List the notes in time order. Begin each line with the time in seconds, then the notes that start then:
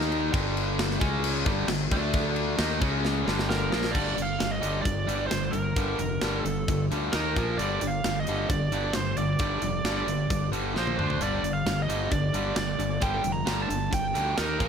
Already playing: D#2 D#3 A#3 D#4
0.01 snare
0.12 crash
0.32 G1 G2 D3 G3, kick, crash
0.57 crash
0.79 snare, crash
0.91 snare
1.00 C#2 C#3 G#3 C#4, kick, crash
1.24 crash
1.46 G1 G2 D3 G3, kick, crash
1.68 G1 G2 D3, snare, crash
1.91 D2 D3 A3 D4, kick, crash
2.13 kick, crash
2.36 crash
2.59 D#2 D#3 A#3 D#4, snare, crash
2.81 C#2 C#3 G#3 C#4, kick, crash
3.05 snare
3.26 G1 G2 D3 G3, snare
3.39 snare
3.50 A#4, snare
3.71 A#1 A#2 F3 A#3, snare
3.84 snare
3.91 G2 D3 G3 D5, kick
3.95 G1, crash
4.16 G1 G2 D3, closed hi-hat
4.22 F5
4.39 G1 G2 D3, snare, closed hi-hat
4.51 D#5
4.61 G1 G2 D3 G3, closed hi-hat
4.82 G1 G2 D3 D5, kick
4.86 closed hi-hat
5.07 G1 G2 D3 G3, closed hi-hat
5.27 G2 D3 C5, snare, closed hi-hat
5.32 G1
5.51 G1 G2 D3 A#4, closed hi-hat
5.76 G1 G2 D3 G3, kick, closed hi-hat
5.99 F1 G2 D3, closed hi-hat
6.21 G1 G2 D3 G3, snare, closed hi-hat
6.38 A4
6.45 G1 G2 D3, closed hi-hat
6.68 G1 G2 D3, kick, closed hi-hat
6.91 D2 G2 D3 G3, closed hi-hat
7.12 D#2 D#3 A#3 D#4 A#4, snare, closed hi-hat
7.36 A#1 A#2 F3 A#3, kick, closed hi-hat
7.58 G1 G2 D3 G3 D5, closed hi-hat
7.81 G1 G2 D3, closed hi-hat
7.87 F5
8.04 G1 G2 D3, snare, closed hi-hat
8.20 D#5
8.27 G1 G2 D3 G3, closed hi-hat
8.49 G1 G2 D3 D5, kick, closed hi-hat
8.72 G1 G2 D3 G3, closed hi-hat
8.93 G1 G2 D3 C5, snare, closed hi-hat
9.17 G1 G2 D3 D5, closed hi-hat
9.39 G1 G2 D3 G3, kick, closed hi-hat
9.62 F1 G2 D3, closed hi-hat
9.84 G1 G2 D3 G3, snare, closed hi-hat
10.07 G1 G2 D3, closed hi-hat
10.30 G1 G2 D3, kick, closed hi-hat
10.52 G1 G2 D3 G3, closed hi-hat
10.74 A#1 A#2 F3 A#3 C5, snare
10.87 high tom
10.97 D2 D3 A3 D4, mid tom
11.10 floor tom
11.20 G1 G2 D3 G3 D5, closed hi-hat
11.44 G1 G2 D3, closed hi-hat
11.53 F5
11.66 G1 G2 D3, snare, closed hi-hat
11.82 D#5
11.88 G1 G2 D3 G3, closed hi-hat
12.10 G1 G2 D3 D5, kick, closed hi-hat
12.33 G1 G2 D3 G3, closed hi-hat
12.56 G1 G2 D3 D5, snare, closed hi-hat
12.79 G1 G2 D3, closed hi-hat
13.01 G1 G2 D3 G3 G5, kick, closed hi-hat
13.24 F1 G2 D3, closed hi-hat
13.32 A#5
13.46 G1 G2 D3 G3, snare, closed hi-hat
13.62 A5
13.69 G1 G2 D3, closed hi-hat
13.91 G1 G2 D3 G5, kick, closed hi-hat
14.14 D2 G2 D3 G3, closed hi-hat
14.37 D#2 D#3 A#3 D#4 A#4, snare, closed hi-hat
14.60 A#1 A#2 F3 A#3, kick, closed hi-hat